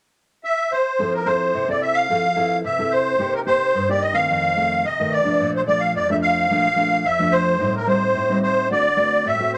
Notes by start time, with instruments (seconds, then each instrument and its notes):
0.44 accordion E5
0.72 accordion C5
0.99 nylon-string guitar F3 C4 E4 A4
1.14 accordion A#4
1.25 nylon-string guitar C4 E4 A4, accordion C5
1.54 nylon-string guitar C3
1.68 nylon-string guitar C4 E4 A4, accordion D5
1.81 accordion E5
1.94 accordion F5
2.10 nylon-string guitar F3 C4 E4 A4
2.36 nylon-string guitar C4 E4 A4
2.64 nylon-string guitar C3, accordion E5
2.79 nylon-string guitar C4 E4 A4
2.91 accordion C5
3.19 nylon-string guitar C3 A#3 D#4 G4
3.34 accordion A#4
3.46 nylon-string guitar A#3 D#4 G4, accordion C5
3.74 nylon-string guitar G2
3.89 nylon-string guitar A#3 D#4 G4, accordion D5
4.01 accordion D#5
4.13 nylon-string guitar D#3 A3 C4, accordion F5
4.29 nylon-string guitar F2
4.56 nylon-string guitar D#3 A3 C4
4.85 nylon-string guitar C3, accordion D#5
5.00 nylon-string guitar D#3 A3 C4
5.12 accordion D5
5.24 nylon-string guitar F3 A3 D4
5.40 nylon-string guitar A#2
5.56 accordion C5
5.66 nylon-string guitar F3 A3 D4, accordion D5
5.80 accordion F5
5.95 nylon-string guitar F2, accordion D5
6.09 nylon-string guitar F3 A3 D4, accordion E5
6.22 accordion F5
6.50 nylon-string guitar A#2 F3 A3 D4
6.76 nylon-string guitar F3 A3 D4
7.04 nylon-string guitar F2, accordion E5
7.19 nylon-string guitar F3 A3 D4
7.32 accordion C5
7.60 nylon-string guitar A2 G3 C4 D#4
7.76 accordion A#4
7.87 nylon-string guitar G3 C4 D#4, accordion C5
8.15 nylon-string guitar A2
8.29 nylon-string guitar G3 C4 D#4
8.43 accordion C5
8.70 nylon-string guitar D3 A3 C4 F#4, accordion D5
8.96 nylon-string guitar A3 C4 F#4
9.25 nylon-string guitar A2, accordion E5
9.39 nylon-string guitar A3 C4 F#4
9.54 accordion C5